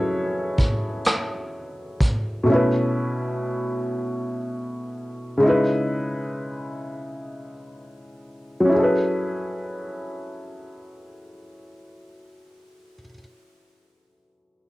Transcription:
Already playing: F#3 C#4 E4 G#4 A4 B4 C#5
0.58 kick, closed hi-hat
1.05 cross-stick, closed hi-hat
2.00 kick, closed hi-hat
2.43 B2 A3
2.49 C#4 E4
2.55 B4
5.37 C#3 G#3
5.43 D#4 E4
5.49 B4
8.60 F#3
8.65 C#4
8.69 E4
8.74 G#4
8.79 A4
8.83 B4

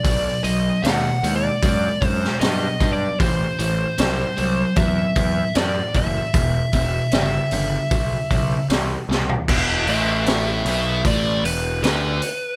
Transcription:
Already playing: D5
0.04 B1 B2 F#3, kick, open hi-hat
0.44 B1 B2 F#3 D#5, open hi-hat
0.82 D#2 B2 G#3 F#5, snare, open hi-hat
1.23 D#2 B2 G#3, open hi-hat
1.36 D5
1.62 F#2 B2 G#3, kick, open hi-hat
2.02 F#2 B2 G#3, kick, open hi-hat
2.07 C5
2.24 snare
2.40 G2 B2 F#3 D#5, snare, open hi-hat
2.80 G2 B2 F#3, kick, open hi-hat
2.93 D5
3.20 A1 A2 E3 C5, kick, open hi-hat
3.59 A1 A2 E3, open hi-hat
3.98 C2 A2 F#3, snare, open hi-hat
4.37 C2 A2 F#3, open hi-hat
4.76 E2 A2 F#3 E5, kick, open hi-hat
5.16 E2 A2 F#3, kick, open hi-hat
5.55 F#2 A2 E3 D5, snare, open hi-hat
5.94 F#1 A2 E3 E5, kick, open hi-hat
6.34 E1 E2 B2, kick, open hi-hat
6.73 E1 E2 B2, kick, open hi-hat
7.11 G1 E2 C#3, snare, open hi-hat
7.51 G1 E2 C#3, open hi-hat
7.91 B1 E2 C#3, kick, open hi-hat
8.31 B1 E2 C#3, kick, open hi-hat
8.70 C2 E2 B2, snare, open hi-hat
9.09 C2 E2 B2, snare
9.29 floor tom
9.48 E1 E2, kick, crash
9.87 A1 A2 E5, open hi-hat
10.26 snare, open hi-hat
10.65 B1 B2, open hi-hat
11.05 A1 A2 D5, kick, open hi-hat
11.44 E1 E2 B4, open hi-hat
11.83 D2 D3 B4, snare, open hi-hat
12.22 open hi-hat

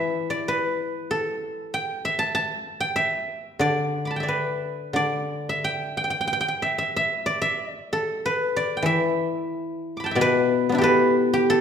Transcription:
Already playing: E3 D5 E5
0.30 D5
0.48 B4
1.11 A4
1.74 G5
2.05 E5
2.19 A5
2.35 A5
2.80 G5
2.96 E5
3.59 D3 D5
4.05 B5 D6
4.11 A5
4.16 E5 G5
4.23 D5
4.28 B4
4.93 D3 D5
5.49 E5
5.64 G5
5.97 G5
6.04 G5
6.10 G5
6.21 G5
6.27 G5
6.33 G5
6.41 G5
6.48 G5
6.62 E5
6.78 E5
6.96 E5
7.26 D5
7.42 E5
7.71 D5
7.93 A4
8.26 B4
8.56 D5
8.77 G5
8.82 E3 E5
9.97 B5 D6
10.04 G5 A5
10.11 E5
10.15 B2 D5
10.21 B4
10.69 B3 D4
10.75 E4 G4
10.81 A4 B4
11.33 G4
11.50 A4

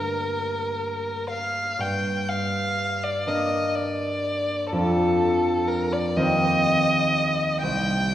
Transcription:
Already playing: G2 A#3 D4 A#4
1.30 F5
1.79 G2 G5
2.29 F5
3.03 D5
3.26 A#3 D4 A#4 D#5
3.75 D5
4.72 F2 D4 A4
5.68 A#4
5.92 D5
6.16 D#2 C4 D#4 C5 D#5
7.63 C2 G5

